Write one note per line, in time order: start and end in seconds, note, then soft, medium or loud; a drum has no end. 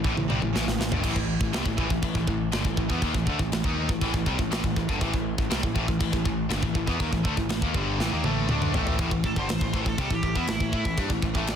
0.04 0.16 A1 medium
0.04 0.16 A2 loud
0.04 0.16 E3 medium
0.04 kick medium
0.17 0.28 A1 medium
0.17 0.29 A2 medium
0.17 0.30 E3 medium
0.17 high tom medium
0.29 0.41 C2 medium
0.29 0.41 C3 loud
0.29 0.42 G3 loud
0.29 mid tom medium
0.42 0.54 A1 medium
0.42 0.54 A2 medium
0.42 0.55 E3 medium
0.42 mid tom medium
0.54 0.66 A1 loud
0.54 0.66 A2 medium
0.54 0.67 E3 loud
0.54 snare medium
0.67 0.79 A1 medium
0.67 0.79 A2 medium
0.67 0.79 E3 medium
0.67 snare medium
0.79 0.91 A1 medium
0.79 0.92 A2 medium
0.79 0.92 E3 medium
0.79 snare loud
0.92 1.03 G1 loud
0.92 1.04 G2 medium
0.92 1.04 D3 loud
0.92 floor tom loud
1.04 1.16 A1 medium
1.04 1.16 A2 loud
1.04 1.17 E3 loud
1.04 kick loud
1.04 crash medium
1.04 china medium
1.16 1.39 A1 medium
1.16 1.38 A2 medium
1.16 1.38 E3 medium
1.16 kick medium
1.41 1.53 A1 medium
1.41 1.55 A2 medium
1.41 1.55 E3 medium
1.41 kick loud
1.53 1.65 C2 medium
1.53 1.66 C3 medium
1.53 1.66 G3 loud
1.53 snare loud
1.53 china medium
1.66 1.78 A1 medium
1.66 1.79 A2 medium
1.66 1.79 E3 medium
1.66 kick medium
1.78 1.90 A1 medium
1.78 1.90 A2 medium
1.78 1.91 E3 loud
1.78 kick medium
1.90 2.02 A1 medium
1.90 2.03 A2 medium
1.90 2.03 E3 medium
1.90 kick medium
2.02 2.14 A1 medium
2.02 2.15 A2 medium
2.02 2.16 E3 medium
2.02 kick loud
2.02 china medium
2.15 2.27 A1 medium
2.15 2.28 A2 medium
2.15 2.29 E3 medium
2.15 kick loud
2.27 2.51 A1 medium
2.27 2.49 A2 medium
2.27 2.49 E3 medium
2.27 kick medium
2.52 2.64 G1 medium
2.52 2.65 G2 medium
2.52 2.65 D3 medium
2.52 snare loud
2.52 china medium
2.65 2.77 A1 medium
2.65 2.77 A2 medium
2.65 2.78 E3 medium
2.65 kick medium
2.77 2.89 A1 medium
2.77 2.91 A2 medium
2.77 2.90 E3 medium
2.77 kick medium
2.90 3.01 E2 medium
2.90 3.03 E3 medium
2.90 3.03 B3 loud
2.90 kick medium
3.02 3.14 D#2 medium
3.02 3.15 D#3 loud
3.02 3.15 A#3 loud
3.02 kick medium
3.02 china medium
3.15 3.26 A1 medium
3.15 3.28 A2 medium
3.15 3.28 E3 medium
3.15 kick medium
3.27 3.39 D2 loud
3.27 3.40 D3 medium
3.27 3.41 A3 loud
3.27 kick medium
3.39 3.51 A1 medium
3.39 3.52 A2 medium
3.39 3.53 E3 medium
3.39 kick medium
3.52 3.64 A1 medium
3.52 3.64 A2 medium
3.52 3.65 E3 medium
3.52 snare loud
3.52 china medium
3.64 3.88 D#2 loud
3.64 3.89 D#3 medium
3.64 3.89 A#3 medium
3.64 3.90 D#4 loud
3.64 kick loud
3.89 4.01 A1 medium
3.89 4.00 A2 medium
3.89 4.01 E3 medium
3.89 kick loud
4.01 4.13 A1 medium
4.01 4.13 A2 medium
4.01 4.14 E3 loud
4.01 kick loud
4.01 china medium
4.14 4.26 A1 medium
4.14 4.27 A2 medium
4.14 4.27 E3 medium
4.14 kick medium
4.26 4.38 C2 loud
4.26 4.39 C3 medium
4.26 4.39 G3 loud
4.26 kick medium
4.39 4.51 A1 medium
4.39 4.50 A2 medium
4.39 4.51 E3 medium
4.39 kick medium
4.51 4.64 A1 medium
4.51 4.63 A2 medium
4.51 4.63 E3 loud
4.51 snare loud
4.51 china medium
4.64 4.76 A1 medium
4.64 4.75 A2 medium
4.64 4.76 E3 medium
4.64 kick medium
4.76 4.88 A1 medium
4.76 4.89 A2 medium
4.76 4.89 E3 medium
4.76 kick medium
4.89 5.01 G1 loud
4.89 5.01 G2 medium
4.89 5.01 D3 loud
4.89 kick medium
5.01 5.13 A1 medium
5.01 5.13 A2 loud
5.01 5.13 E3 loud
5.01 kick medium
5.01 china medium
5.14 5.37 A1 medium
5.14 5.34 A2 medium
5.14 5.34 E3 medium
5.14 kick medium
5.38 5.50 A1 medium
5.38 5.50 A2 medium
5.38 5.50 E3 medium
5.38 kick medium
5.50 5.62 C2 loud
5.50 5.62 C3 loud
5.50 5.62 G3 loud
5.50 snare loud
5.50 china medium
5.62 5.75 A1 medium
5.62 5.73 A2 medium
5.62 5.74 E3 medium
5.62 kick medium
5.74 5.88 A1 loud
5.74 5.87 A2 loud
5.74 5.87 E3 loud
5.74 kick loud
5.88 6.00 A1 medium
5.88 5.98 A2 medium
5.88 5.98 E3 medium
5.88 kick medium
5.99 6.12 A1 medium
5.99 6.11 A2 medium
5.99 6.11 E3 medium
5.99 kick loud
5.99 china medium
6.12 6.25 A1 medium
6.12 6.23 A2 medium
6.12 6.24 E3 medium
6.12 kick medium
6.25 6.49 A1 medium
6.25 6.45 A2 medium
6.25 6.45 E3 medium
6.25 kick medium
6.49 6.62 G1 loud
6.49 6.61 G2 loud
6.49 6.62 D3 loud
6.49 snare loud
6.49 china medium
6.63 6.74 A1 medium
6.63 6.75 A2 medium
6.63 6.75 E3 medium
6.63 kick medium
6.75 6.87 A1 medium
6.75 6.87 A2 medium
6.75 6.87 E3 medium
6.75 kick medium
6.87 6.99 E2 loud
6.87 6.99 E3 medium
6.87 7.00 B3 loud
6.87 kick medium
7.00 7.12 D#2 medium
7.00 7.12 D#3 loud
7.00 7.13 A#3 loud
7.00 kick loud
7.00 china medium
7.13 7.24 A1 medium
7.13 7.26 A2 medium
7.13 7.26 E3 medium
7.13 kick medium
7.25 7.37 D2 medium
7.25 7.38 D3 medium
7.25 7.38 A3 loud
7.25 kick medium
7.37 7.49 A1 medium
7.37 7.51 A2 medium
7.37 7.51 E3 medium
7.37 kick medium
7.49 7.62 A1 medium
7.49 7.63 A2 medium
7.49 7.63 E3 medium
7.49 snare loud
7.49 china medium
7.62 7.74 D#2 loud
7.62 7.74 D#3 loud
7.62 7.75 A#3 loud
7.62 kick loud
7.74 7.98 G1 loud
7.74 7.99 G2 loud
7.74 8.00 D3 medium
7.74 8.00 G3 loud
7.74 kick medium
7.99 8.11 A1 medium
7.99 8.12 A2 loud
7.99 8.12 E3 loud
7.99 snare medium
8.11 8.23 D#2 medium
8.11 8.24 D#3 medium
8.11 8.24 A#3 loud
8.24 8.47 A1 medium
8.24 8.49 A2 medium
8.24 8.49 E3 medium
8.24 8.49 A3 medium
8.24 high tom medium
8.49 8.72 D2 loud
8.49 8.73 D3 medium
8.49 8.74 A3 loud
8.49 8.74 D4 loud
8.49 mid tom medium
8.62 mid tom medium
8.74 8.97 A1 loud
8.74 8.98 A2 medium
8.74 8.98 E3 medium
8.74 8.98 A3 medium
8.74 floor tom medium
8.87 floor tom medium
8.99 9.10 A1 medium
8.99 9.10 A2 loud
8.99 9.11 E3 loud
8.99 kick loud
8.99 crash medium
9.11 9.23 A1 medium
9.11 9.23 A2 medium
9.11 9.24 E3 medium
9.11 kick medium
9.24 9.35 A1 medium
9.24 9.37 A2 medium
9.24 9.37 E3 medium
9.24 9.37 A4 loud
9.24 kick medium
9.36 9.48 G1 loud
9.36 9.48 G2 medium
9.36 9.48 D3 loud
9.36 9.86 C5 medium
9.36 kick medium
9.49 9.60 A1 medium
9.49 9.61 A2 medium
9.49 9.61 E3 medium
9.49 snare loud
9.49 crash medium
9.61 9.73 A1 medium
9.61 9.71 A2 medium
9.61 9.72 E3 medium
9.61 kick loud
9.73 9.85 A1 medium
9.73 9.85 A2 loud
9.73 9.85 E3 loud
9.73 kick loud
9.86 9.97 A1 medium
9.86 9.97 A2 medium
9.86 9.98 E3 medium
9.86 10.11 A4 medium
9.86 kick medium
9.98 10.10 C2 loud
9.98 10.10 C3 medium
9.98 10.10 G3 loud
9.98 kick medium
9.98 crash medium
10.10 10.22 A1 medium
10.10 10.22 A2 medium
10.10 10.22 E3 medium
10.10 kick medium
10.15 10.37 G4 medium
10.23 10.35 A1 medium
10.23 10.35 A2 medium
10.23 10.34 E3 medium
10.23 kick medium
10.35 10.47 E2 loud
10.35 10.47 E3 loud
10.35 10.48 B3 medium
10.35 10.49 E4 medium
10.35 kick medium
10.47 10.60 A1 medium
10.47 10.59 A2 medium
10.47 10.59 E3 medium
10.47 snare loud
10.47 crash medium
10.52 10.74 E4 medium
10.60 10.72 A1 medium
10.60 10.73 A2 medium
10.60 10.72 E3 medium
10.60 kick medium
10.72 10.84 A2 loud
10.72 10.84 A3 medium
10.72 10.85 E4 loud
10.72 kick medium
10.76 10.99 E4 loud
10.85 10.97 A1 medium
10.85 10.98 A2 medium
10.85 10.97 E3 medium
10.85 kick medium
10.98 11.09 G2 medium
10.98 11.09 G3 loud
10.98 11.10 D4 medium
10.98 kick loud
10.98 crash medium
11.10 11.22 A1 medium
11.10 11.22 A2 medium
11.10 11.23 E3 medium
11.10 kick medium
11.22 11.34 A1 medium
11.22 11.35 A2 medium
11.22 11.36 E3 medium
11.22 kick medium
11.35 11.56 A1 loud
11.35 11.56 A2 medium
11.35 11.56 E3 medium
11.35 11.56 A3 loud
11.35 kick medium
11.47 11.56 D5 loud
11.47 snare loud
11.47 crash medium